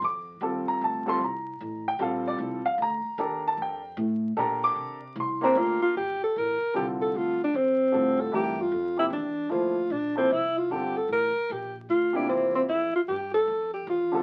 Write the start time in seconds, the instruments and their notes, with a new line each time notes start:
0.02 upright bass F2, grand piano D6
0.41 upright bass D#2, grand piano G3 C4 F4 A4
0.68 grand piano A#5, muted upright bass stroke
0.81 upright bass D2, grand piano A5
1.06 grand piano G3 C4 F4 A4 C6
1.21 upright bass C2, grand piano A#5
1.60 upright bass A1
1.88 grand piano G5
1.99 upright bass A#1, grand piano G3 C4 F4 A4 F5
2.28 grand piano D5
2.38 upright bass C2
2.65 grand piano F5, muted upright bass stroke
2.78 upright bass D2
2.82 grand piano A#5
3.04 muted upright bass stroke
3.18 upright bass D#2, grand piano D4 G4 A4 A#4
3.48 grand piano A5
3.57 upright bass F2
3.62 grand piano G5
3.97 upright bass A2
4.37 upright bass A#2, grand piano D4 G4 A4 A#4 A#5
4.64 grand piano D6
4.76 upright bass C3
5.16 upright bass C2
5.20 grand piano C6
5.41 grand piano A#3 D4 G4 A#4, alto saxophone C4
5.45 grand piano A#5
5.55 upright bass D2, alto saxophone F4
5.82 alto saxophone F4
5.96 upright bass G1, alto saxophone G4
6.22 alto saxophone A4, muted upright bass stroke
6.36 upright bass A1, alto saxophone A#4
6.74 upright bass C2, grand piano D3 G3 C4 F4 A4, alto saxophone G4
7.02 alto saxophone A4
7.14 upright bass D2, alto saxophone F4
7.44 alto saxophone D4
7.54 upright bass F2, alto saxophone C4
7.92 upright bass A2, grand piano D3 G3 C4 F4 A4
8.21 alto saxophone A4
8.32 upright bass G2, grand piano E3 A3 D4 G4 A#4, alto saxophone G4
8.61 alto saxophone F4
8.72 upright bass F2
8.97 grand piano C3 F3 A#3 E4 G4, alto saxophone E4
9.10 upright bass E2, alto saxophone D4
9.49 upright bass D2, grand piano F3 A#3 E4 A4 C5, alto saxophone F4
9.90 upright bass A#1, alto saxophone D4
10.16 grand piano F3 A#3 E4 A4 C5, alto saxophone C4
10.30 upright bass C2, alto saxophone E4
10.58 alto saxophone F4
10.70 upright bass G1, grand piano D3 G3 C4 F4 A4, alto saxophone G4
10.97 alto saxophone A4
11.09 upright bass A1
11.13 alto saxophone A#4
11.35 muted upright bass stroke
11.50 upright bass A#1, alto saxophone G4
11.89 upright bass D2, alto saxophone F4
12.13 grand piano C3 A#3 E4 F4 G4, alto saxophone D4
12.29 upright bass E2, alto saxophone C4
12.56 alto saxophone C4
12.69 upright bass F2, alto saxophone E4
12.94 alto saxophone F4, muted upright bass stroke
13.08 upright bass G2, alto saxophone G4
13.34 alto saxophone A4
13.47 upright bass F2
13.74 alto saxophone G4
13.87 upright bass E2, alto saxophone F4
14.12 grand piano D3 G3 C4 F4 A4